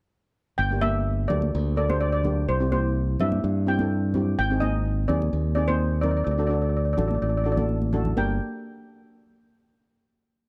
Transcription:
0.58 G1 G5
0.71 A#3 D4 G4
0.81 A#3 D4 G4 E5, high conga
1.28 D2 A#3 D4 G4 D5, low conga
1.42 high conga
1.55 D2
1.76 A#3 D4 A4 D5
1.89 A#3 D4 G4 C5, high conga
2.01 D5
2.12 D5
2.24 A#3 D4 G4, low conga
2.48 C2 C5
2.60 C4 E4 G4
2.72 C4 E4 G4 C5, high conga
3.20 G2 C4 E4 G4 E5, low conga
3.32 high conga
3.44 G2
3.67 C4 E4 G4 G5
3.79 C4 E4 A4, high conga
4.14 C4 E4 G4, low conga
4.39 G#1 G5
4.50 C4 D#4 G#4
4.60 C4 D#4 G#4 D#5, high conga
5.08 D#2 C4 D#4 G#4 D5, low conga
5.22 high conga
5.33 D#2
5.55 C4 D#4 G#4 D5
5.68 C4 D#4 G#4 C5, high conga
6.01 C4 D#4 A#4 D5, low conga
6.11 D5
6.17 D5
6.24 D2 D5
6.31 D5
6.38 D4 F#4 A4 D5
6.47 D4 F#4 A4 D5
6.54 D5
6.62 D5
6.69 D5
6.77 D5
6.85 D5
6.93 D4 D5
6.97 A1 F#4 A4 D5, low conga
7.08 D5, high conga
7.15 D5
7.22 A1 D5
7.29 D5
7.37 D5
7.44 D4 F#4 A4 D5
7.52 D5
7.57 D4 F#4 A4, high conga, low conga
7.69 high conga
7.82 high conga
7.93 D4 F#4 A4, low conga
8.05 low conga
8.17 G1 D4 G4 A#4 G5, high conga

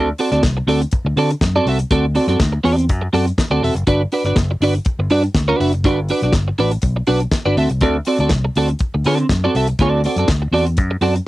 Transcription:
Already playing: D2
0.18 C4 F#4 A4 D5, open hi-hat
0.32 D2 C4 F#4 A4 D5, snare, closed hi-hat
0.43 C2, muted clean electric guitar stroke, kick, snare, closed hi-hat
0.57 muted clean electric guitar stroke
0.67 D2 C4 F#4 A4 D5, open hi-hat
0.82 muted clean electric guitar stroke, closed hi-hat
0.91 kick, closed hi-hat
1.05 D2, muted clean electric guitar stroke
1.16 D3 C4 F#4 A4 D5, open hi-hat
1.31 muted clean electric guitar stroke, closed hi-hat
1.41 F#2, muted clean electric guitar stroke, kick, snare, closed hi-hat
1.56 C4 F#4 A4 D5
1.66 C2 C4 F#4 A4 E5, open hi-hat
1.79 closed hi-hat
1.91 D2 C4 F#4 A4 D5, kick, closed hi-hat
2.15 C4 F#4 A4 D5, open hi-hat
2.27 F#2 C4 F#4 A4 D5, snare, closed hi-hat
2.40 D2, muted clean electric guitar stroke, kick, snare, closed hi-hat
2.52 muted clean electric guitar stroke
2.64 E2 C4 F#4 A4 D5, open hi-hat
2.77 muted clean electric guitar stroke, closed hi-hat
2.89 F#2, kick, closed hi-hat
3.01 muted clean electric guitar stroke
3.13 F#2 C4 F#4 A4 D5, open hi-hat
3.27 muted clean electric guitar stroke, closed hi-hat
3.38 muted clean electric guitar stroke, kick, snare, closed hi-hat
3.50 D2 C4 F#4 A4 D5
3.62 E1 C4 F#4 A4 E5, open hi-hat
3.75 F#1, muted clean electric guitar stroke, closed hi-hat
3.87 G1 D4 F#4 B4 D5, kick, closed hi-hat
4.12 D4 F#4 B4 D5, open hi-hat
4.24 G1 D4 F#4 B4 D5, snare, closed hi-hat
4.36 F#1, muted clean electric guitar stroke, kick, snare, closed hi-hat
4.51 muted clean electric guitar stroke
4.61 G1 D4 F#4 B4 D5, open hi-hat
4.75 muted clean electric guitar stroke, closed hi-hat
4.85 kick, closed hi-hat
4.99 G1, muted clean electric guitar stroke
5.10 G2 D4 F#4 B4 D5, open hi-hat
5.24 muted clean electric guitar stroke, closed hi-hat
5.35 D2, muted clean electric guitar stroke, kick, snare, closed hi-hat
5.48 D4 F#4 B4 D5
5.60 F#1 D4 F#4 B4 E5, open hi-hat
5.73 muted clean electric guitar stroke, closed hi-hat
5.84 G1 D4 F#4 B4 D5, kick, closed hi-hat
6.09 D4 F#4 B4 D5, open hi-hat
6.22 B1 D4 F#4 B4 D5, snare, closed hi-hat
6.33 G1, muted clean electric guitar stroke, kick, snare, closed hi-hat
6.48 muted clean electric guitar stroke
6.58 A1 D4 F#4 B4 D5, open hi-hat
6.71 muted clean electric guitar stroke, closed hi-hat
6.82 B1, kick, closed hi-hat
6.96 muted clean electric guitar stroke
7.07 B1 D4 F#4 B4 D5, open hi-hat
7.20 muted clean electric guitar stroke, closed hi-hat
7.31 muted clean electric guitar stroke, kick, snare, closed hi-hat
7.45 G1 D4 F#4 B4 D5
7.57 D2 C4 F#4 A4 E5, open hi-hat
7.69 C2, muted clean electric guitar stroke, closed hi-hat
7.81 D2 C4 F#4 A4 D5, kick, closed hi-hat
8.05 C4 F#4 A4 D5, open hi-hat
8.18 D2 C4 F#4 A4 D5, closed hi-hat
8.29 C2, muted clean electric guitar stroke, kick, snare, closed hi-hat
8.45 muted clean electric guitar stroke
8.55 D2 C4 F#4 A4 D5, open hi-hat
8.68 muted clean electric guitar stroke, closed hi-hat
8.79 kick, closed hi-hat
8.94 D2, muted clean electric guitar stroke
9.04 D3 C4 F#4 A4 D5, open hi-hat
9.19 muted clean electric guitar stroke, closed hi-hat
9.29 F#2, muted clean electric guitar stroke, kick, snare, closed hi-hat
9.44 C4 F#4 A4 D5
9.55 C2 C4 F#4 A4 E5, open hi-hat
9.67 muted clean electric guitar stroke, closed hi-hat
9.79 D2 C4 F#4 A4 D5, kick, closed hi-hat
10.04 C4 F#4 A4 D5, open hi-hat
10.16 F#2 C4 F#4 A4 D5, closed hi-hat
10.28 D2, muted clean electric guitar stroke, kick, snare, closed hi-hat
10.42 muted clean electric guitar stroke
10.51 E2 C4 F#4 A4 D5, open hi-hat
10.66 muted clean electric guitar stroke, closed hi-hat
10.77 F#2, kick, closed hi-hat
10.91 muted clean electric guitar stroke
11.01 F#2 C4 F#4 A4 D5, open hi-hat
11.15 muted clean electric guitar stroke, closed hi-hat

